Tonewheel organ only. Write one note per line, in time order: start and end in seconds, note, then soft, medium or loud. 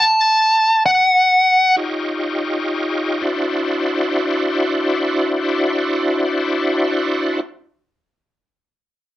1.76 3.22 D#4 medium
1.76 3.22 F4 medium
1.76 3.22 G4 medium
1.76 3.22 C#5 medium
3.22 7.40 D4 medium
3.22 7.40 E4 medium
3.22 7.40 F#4 medium
3.22 7.40 C5 medium